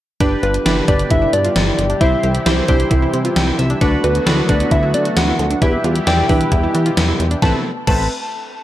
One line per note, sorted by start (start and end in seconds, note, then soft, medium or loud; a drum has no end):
0.20 0.36 G1 loud
0.20 1.99 B2 medium
0.20 1.99 D3 medium
0.20 3.78 G3 medium
0.20 0.55 D4 medium
0.20 0.33 D4 medium
0.20 1.99 D4 medium
0.20 3.78 G4 medium
0.20 0.55 G4 medium
0.20 0.55 B4 loud
0.20 kick loud
0.20 closed hi-hat medium
0.43 0.59 G1 loud
0.43 0.56 F4 medium
0.43 0.90 B4 loud
0.43 closed hi-hat medium
0.54 closed hi-hat medium
0.66 0.81 G1 loud
0.66 0.83 D4 medium
0.66 0.78 E4 medium
0.66 0.83 G4 medium
0.66 0.83 B4 medium
0.66 snare loud
0.66 closed hi-hat medium
0.88 1.04 G1 medium
0.88 1.58 D4 medium
0.88 1.01 D4 medium
0.88 1.58 G4 medium
0.88 1.58 B4 medium
0.88 1.10 D5 loud
0.88 kick medium
0.88 closed hi-hat medium
0.99 closed hi-hat medium
1.10 1.26 G1 loud
1.10 1.17 E4 medium
1.10 1.35 E5 loud
1.10 kick medium
1.10 closed hi-hat medium
1.22 1.34 E4 medium
1.33 1.49 G2 loud
1.33 1.55 D5 loud
1.33 closed hi-hat medium
1.45 1.57 F4 medium
1.45 closed hi-hat medium
1.56 1.72 G1 loud
1.56 2.02 D5 loud
1.56 snare loud
1.56 closed hi-hat medium
1.67 1.80 E4 medium
1.78 1.94 G1 loud
1.78 closed hi-hat medium
1.90 1.96 D4 medium
1.90 closed hi-hat soft
2.01 2.17 C2 loud
2.01 3.80 C3 medium
2.01 3.80 E3 medium
2.01 2.36 E4 medium
2.01 2.13 E4 medium
2.01 3.80 E4 medium
2.01 2.36 G4 medium
2.01 2.36 C5 medium
2.01 2.45 E5 loud
2.01 kick loud
2.01 closed hi-hat medium
2.23 2.39 C2 medium
2.23 2.36 G4 medium
2.23 closed hi-hat medium
2.35 closed hi-hat medium
2.46 2.62 C2 loud
2.46 2.63 E4 medium
2.46 2.59 E4 medium
2.46 2.63 G4 medium
2.46 2.64 C5 medium
2.46 3.10 C5 medium
2.46 snare loud
2.46 closed hi-hat medium
2.68 2.84 C2 loud
2.68 2.81 D4 medium
2.68 3.38 E4 medium
2.68 3.38 G4 medium
2.68 3.38 C5 medium
2.68 kick medium
2.68 closed hi-hat medium
2.80 closed hi-hat medium
2.91 3.07 C2 loud
2.91 2.97 E4 medium
2.91 kick medium
2.91 closed hi-hat medium
3.02 3.15 E4 medium
3.14 3.29 C3 loud
3.14 closed hi-hat medium
3.25 3.37 F4 medium
3.25 closed hi-hat medium
3.36 3.52 C2 loud
3.36 3.57 G5 medium
3.36 snare loud
3.36 closed hi-hat medium
3.48 3.60 E4 medium
3.59 3.74 C2 loud
3.59 3.80 E5 medium
3.59 closed hi-hat medium
3.70 3.76 D4 medium
3.70 closed hi-hat soft
3.81 3.97 D2 loud
3.81 5.60 D3 medium
3.81 5.60 F#3 medium
3.81 5.60 A3 medium
3.81 5.60 B3 medium
3.81 4.16 D4 medium
3.81 3.94 D4 loud
3.81 4.16 F#4 medium
3.81 5.60 F#4 medium
3.81 4.16 B4 loud
3.81 kick loud
3.81 closed hi-hat medium
4.04 4.20 D2 loud
4.04 4.17 F#4 medium
4.04 4.51 B4 medium
4.04 closed hi-hat medium
4.15 closed hi-hat medium
4.26 4.42 D2 medium
4.26 4.44 D4 medium
4.26 4.39 E4 medium
4.26 4.44 F#4 medium
4.26 4.44 B4 medium
4.26 snare loud
4.26 closed hi-hat medium
4.49 4.65 D2 loud
4.49 5.19 D4 medium
4.49 4.62 D4 medium
4.49 5.19 F#4 medium
4.49 5.19 B4 medium
4.49 4.73 D5 medium
4.49 kick medium
4.49 closed hi-hat medium
4.60 closed hi-hat medium
4.71 4.96 D2 loud
4.71 4.78 E4 medium
4.71 4.94 E5 loud
4.71 kick medium
4.71 closed hi-hat medium
4.83 4.95 E4 medium
4.94 5.10 D3 loud
4.94 5.18 D5 medium
4.94 closed hi-hat medium
5.05 5.18 F#4 medium
5.05 closed hi-hat medium
5.17 5.32 D2 loud
5.17 5.62 F#5 loud
5.17 snare loud
5.17 closed hi-hat medium
5.28 5.40 E4 medium
5.39 5.55 D2 loud
5.39 closed hi-hat medium
5.50 5.57 D4 medium
5.50 closed hi-hat medium
5.62 5.78 E2 loud
5.62 7.40 B2 medium
5.62 7.40 E3 medium
5.62 7.40 G3 medium
5.62 7.40 E4 medium
5.62 5.97 E4 medium
5.62 5.74 E4 medium
5.62 7.40 G4 medium
5.62 5.97 G4 medium
5.62 5.97 B4 medium
5.62 6.09 E5 loud
5.62 kick loud
5.62 closed hi-hat medium
5.84 6.00 E2 loud
5.84 5.97 F4 medium
5.84 closed hi-hat medium
5.96 closed hi-hat medium
6.07 6.23 E2 loud
6.07 6.24 E4 medium
6.07 6.20 E4 medium
6.07 6.24 G4 medium
6.07 6.24 D5 medium
6.07 6.75 G5 loud
6.07 snare loud
6.07 closed hi-hat medium
6.29 6.45 E2 loud
6.29 6.42 D4 medium
6.29 6.99 E4 medium
6.29 6.99 G4 medium
6.29 6.99 B4 medium
6.29 kick medium
6.29 open hi-hat medium
6.41 closed hi-hat medium
6.52 6.68 E2 loud
6.52 6.58 E4 medium
6.52 kick medium
6.52 closed hi-hat medium
6.63 6.76 E4 medium
6.75 6.90 E3 loud
6.75 closed hi-hat medium
6.86 6.98 F4 medium
6.86 closed hi-hat medium
6.97 7.13 E2 loud
6.97 snare loud
6.97 closed hi-hat medium
7.08 7.21 E4 medium
7.20 7.36 E2 loud
7.20 closed hi-hat medium
7.31 7.37 D4 medium
7.31 closed hi-hat medium
7.42 7.55 A1 medium
7.42 7.63 C3 medium
7.42 7.55 A3 medium
7.42 7.63 A3 medium
7.42 7.63 B3 medium
7.42 7.55 C4 medium
7.42 7.63 E4 medium
7.42 7.55 A4 medium
7.42 7.63 A4 medium
7.42 7.55 B4 medium
7.42 7.55 A5 medium
7.42 kick loud
7.42 snare medium
7.87 8.08 A1 loud
7.87 8.08 A3 medium
7.87 8.08 C4 medium
7.87 8.08 A4 medium
7.87 8.08 B4 medium
7.87 8.08 A5 medium
7.87 kick loud
7.87 crash medium